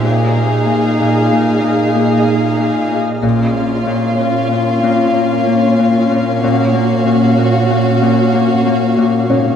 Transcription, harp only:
X:1
M:5/4
L:1/8
Q:1/4=94
K:Bbm
V:1 name="Harp" clef=bass
B,, B, B,, B,, B,, B,, B, B, B,, B,, | B,, B, B,, B,, B,, B,, B, B, B,, B,, | B,, B, B,, B,, B,, B,, B, B, B,, B,, |]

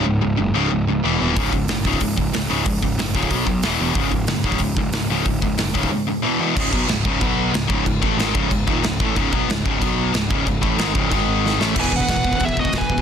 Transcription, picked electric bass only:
X:1
M:4/4
L:1/8
Q:1/4=184
K:C#m
V:1 name="Picked electric bass" clef=bass
C,,, C,,, F,,, C,,, C,,, C,,, E,,, D,,, | C,,, C,,, F,,, C,,, C,,, C,,, C,,, C,,, | C,,, C,,, F,,, C,,, B,,, B,,, E,,, E,,, | C,,, C,,, F,,, C,,, C,,, C,,, C,,, C,,, |
C,,, C,,, F,,, D,,, z4 | C,,, B,,, C,,, C,,, B,,,2 C,,, C,,, | C,,, A,,, G,,, C,,, C,,, D,,, C,,, A,,, | C,,, B,,, C,,, C,,, B,,,2 C,,, C,,, |
C,,, A,,, G,,, C,,, G,,,3 A,,, | E,,,2 E,,, E,,, E,,,2 E,,, E,,, |]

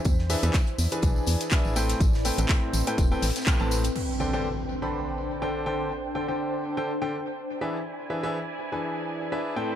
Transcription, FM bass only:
X:1
M:4/4
L:1/16
Q:"Swing 16ths" 1/4=123
K:Em
V:1 name="FM bass" clef=bass
E,,2 z E,, z2 E,, z B,,, z E,, z2 A,,,2 z | A,,,2 z A,,, z2 A,,, z E,,, z A,,, z2 A,,,2 z | z16 | z16 |
z16 |]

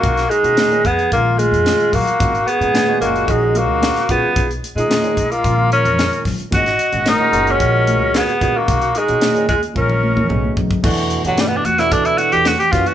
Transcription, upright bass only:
X:1
M:4/4
L:1/16
Q:1/4=111
K:Blyd
V:1 name="Upright bass" clef=bass
B,,,2 z B,,2 z E,,2 A,,,3 E,,2 z A,,, z | G,,,2 z G,,2 z F,,,2 A,,,3 C,,2 z B,,, z | B,,,2 z B,,2 z B,,,2 A,,,3 E,,2 z A,,, z | G,,,2 z G,,,2 z F,,,2 A,,,3 C,,2 z B,,, z |
B,,,2 z B,,2 z D,,2 A,,,3 E,, B,,,2 B,,, z | [K:Edor] E,,3 G,,3 E,,2 D,,2 z E,,2 z F,, z |]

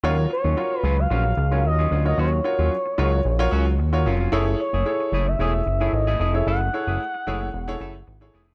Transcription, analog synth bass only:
X:1
M:4/4
L:1/16
Q:1/4=112
K:Ebm
V:1 name="Analog synth bass" clef=bass
E,,2 z E,, z2 D,,2 B,,,2 D,,2 E,,2 =D,,2 | E,,2 z E,, z2 D,,2 B,,,2 D,,2 E,,2 F,,,2 | G,,,2 z G,,, z2 G,,,2 _F,,,2 G,,,2 A,,,2 =F,,,2 | G,,,2 z G,,, z2 G,,,2 _F,,,2 G,,,2 A,,,2 =F,,,2 |]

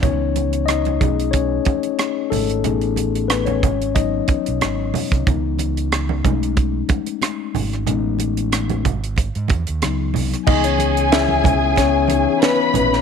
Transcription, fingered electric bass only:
X:1
M:4/4
L:1/16
Q:"Swing 16ths" 1/4=92
K:C#m
V:1 name="Fingered electric bass" clef=bass
C,,6 B,,,4 z4 G,,,2 | A,,,6 G,,,4 z B,,, G,,,2 z ^B,,, | C,,6 B,,,4 z4 G,,,2 | A,,,6 G,,,3 G,, E,, D,, C,,2 ^B,,, z |
C,,8- C,,3 z3 ^A,,,2 |]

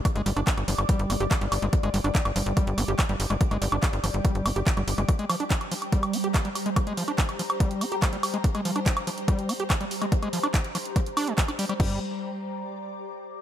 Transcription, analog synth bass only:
X:1
M:4/4
L:1/16
Q:1/4=143
K:Gm
V:1 name="Analog synth bass" clef=bass
z G,,, G,,, G,,, z G,,, G,,, G,,, z G,,, G,,, G,,, z G,,, G,,, G,,, | z G,,, G,,, G,,, z G,,, G,,, G,,, z G,,, G,,, G,,, z G,,, G,,, G,,, | z G,,, G,,, G,,, z G,,, G,,, G,,, z G,,, G,,, G,,, z G,,, G,,, G,,, | z16 |
z16 | z16 | z16 | G,,,2 z12 z2 |]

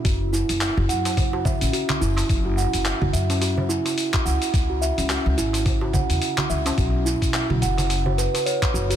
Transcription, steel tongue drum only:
X:1
M:4/4
L:1/16
Q:"Swing 16ths" 1/4=107
K:C#m
V:1 name="Steel tongue drum"
F z E3 F f z2 F e C F z E2- | E F f z2 F e C F z E3 z f z | z F e C F z E3 F f z2 F e C | F z E3 F f z2 F B B c z F F |]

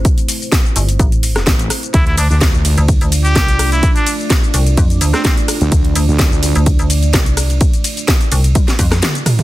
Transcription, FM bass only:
X:1
M:4/4
L:1/16
Q:"Swing 16ths" 1/4=127
K:Ddor
V:1 name="FM bass" clef=bass
z6 G,,,2 A,,,4 z4 | z2 D,, z4 D,,2 D,,3 C,,4 | z6 C,,2 F,,2 D,, z4 z | z2 D,, z4 D,,2 D,,3 C,,4 |
z6 C,,2 z2 F,,2 z4 |]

